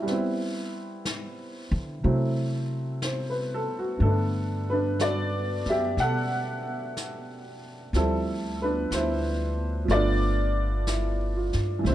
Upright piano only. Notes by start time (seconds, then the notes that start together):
Already playing: E4
0.02 G3 B3
0.10 C4 E4
2.03 F#3 A3 C4 E4
3.04 C5
3.30 B4
3.54 A4
3.79 F#4
3.99 D3 A3 A4
4.05 B3 D4
4.09 D4
4.70 D4 B4
5.01 F#4 D5
5.69 G4 E5
6.00 A4 F#5
7.95 F3 G3 C4 E4 A4
8.62 D4 B4
8.93 E4 C5
9.85 F3 A3
9.91 B3 F4 D5
9.96 D4
10.88 E4
11.37 F4
11.79 E3
11.83 B2 A3 C5
11.88 D4 E4